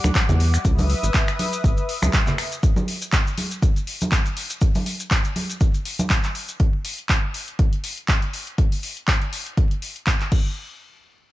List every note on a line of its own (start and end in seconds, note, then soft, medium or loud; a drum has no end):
0.00 0.63 G3 medium
0.00 0.63 F#5 medium
0.00 0.63 D6 medium
0.04 0.11 D2 medium
0.04 finger snap medium
0.04 high conga medium
0.04 maracas medium
0.15 kick loud
0.15 clap loud
0.15 closed hi-hat medium
0.15 maracas medium
0.29 0.58 E2 loud
0.29 closed hi-hat soft
0.29 low conga medium
0.29 maracas soft
0.40 open hi-hat loud
0.54 finger snap medium
0.54 closed hi-hat soft
0.54 maracas medium
0.65 0.95 C#2 medium
0.65 2.61 B4 medium
0.65 2.61 E5 medium
0.65 2.61 D#6 medium
0.65 kick loud
0.65 closed hi-hat medium
0.65 maracas medium
0.79 open hi-hat medium
0.79 high conga loud
0.79 maracas soft
0.90 open hi-hat loud
1.03 1.10 G#1 medium
1.03 closed hi-hat soft
1.03 maracas medium
1.14 kick loud
1.14 clap loud
1.14 closed hi-hat medium
1.14 maracas medium
1.28 finger snap medium
1.28 closed hi-hat soft
1.28 maracas soft
1.39 open hi-hat loud
1.39 high conga medium
1.53 closed hi-hat soft
1.53 maracas medium
1.64 1.72 G#1 loud
1.64 kick loud
1.64 closed hi-hat medium
1.64 maracas medium
1.77 closed hi-hat soft
1.77 maracas soft
1.89 open hi-hat loud
2.02 2.09 C#2 loud
2.02 finger snap medium
2.02 closed hi-hat soft
2.02 high conga medium
2.02 maracas medium
2.13 kick loud
2.13 clap loud
2.13 closed hi-hat medium
2.13 maracas medium
2.27 clap soft
2.27 closed hi-hat soft
2.27 low conga medium
2.27 maracas soft
2.38 finger snap medium
2.38 open hi-hat loud
2.52 closed hi-hat soft
2.52 maracas medium
2.63 kick loud
2.63 closed hi-hat medium
2.63 maracas medium
2.76 high conga medium
2.76 maracas soft
2.88 open hi-hat loud
3.02 closed hi-hat soft
3.02 maracas medium
3.12 kick loud
3.12 clap loud
3.12 closed hi-hat medium
3.12 maracas medium
3.27 maracas soft
3.38 open hi-hat loud
3.38 high conga medium
3.51 closed hi-hat soft
3.51 maracas medium
3.62 kick loud
3.62 closed hi-hat medium
3.62 maracas medium
3.76 closed hi-hat soft
3.76 maracas soft
3.87 open hi-hat loud
4.01 closed hi-hat soft
4.01 high conga medium
4.01 maracas medium
4.12 kick loud
4.12 clap loud
4.12 closed hi-hat medium
4.12 maracas medium
4.26 closed hi-hat soft
4.26 maracas soft
4.37 open hi-hat loud
4.50 closed hi-hat soft
4.50 maracas medium
4.61 kick loud
4.61 closed hi-hat medium
4.61 maracas medium
4.75 open hi-hat medium
4.75 high conga medium
4.75 maracas soft
4.86 open hi-hat loud
5.00 closed hi-hat soft
5.00 maracas medium
5.11 kick medium
5.11 clap loud
5.11 closed hi-hat medium
5.11 maracas medium
5.24 closed hi-hat soft
5.24 maracas soft
5.36 open hi-hat loud
5.36 high conga medium
5.50 closed hi-hat soft
5.50 maracas medium
5.61 kick loud
5.61 closed hi-hat medium
5.61 maracas medium
5.74 closed hi-hat soft
5.74 maracas soft
5.85 open hi-hat medium
5.99 closed hi-hat medium
5.99 high conga medium
5.99 maracas medium
6.10 kick medium
6.10 clap loud
6.10 closed hi-hat medium
6.10 maracas medium
6.24 clap soft
6.24 closed hi-hat soft
6.24 maracas soft
6.35 open hi-hat medium
6.48 closed hi-hat soft
6.48 maracas medium
6.60 kick loud
6.60 closed hi-hat medium
6.85 open hi-hat loud
6.98 closed hi-hat medium
7.09 kick medium
7.09 clap loud
7.09 closed hi-hat medium
7.34 open hi-hat loud
7.48 closed hi-hat medium
7.59 kick loud
7.59 closed hi-hat medium
7.73 closed hi-hat soft
7.84 open hi-hat medium
7.98 closed hi-hat soft
8.08 kick loud
8.08 clap loud
8.08 closed hi-hat medium
8.22 closed hi-hat soft
8.33 open hi-hat medium
8.47 closed hi-hat medium
8.58 kick loud
8.58 closed hi-hat medium
8.72 open hi-hat medium
8.83 open hi-hat medium
8.97 closed hi-hat medium
9.08 kick medium
9.08 clap loud
9.08 closed hi-hat medium
9.22 closed hi-hat soft
9.33 open hi-hat loud
9.46 closed hi-hat medium
9.57 kick loud
9.57 closed hi-hat medium
9.71 closed hi-hat soft
9.82 open hi-hat medium
9.96 closed hi-hat soft
10.07 kick medium
10.07 clap loud
10.07 closed hi-hat medium
10.20 clap soft
10.20 closed hi-hat soft
10.32 kick loud
10.32 crash medium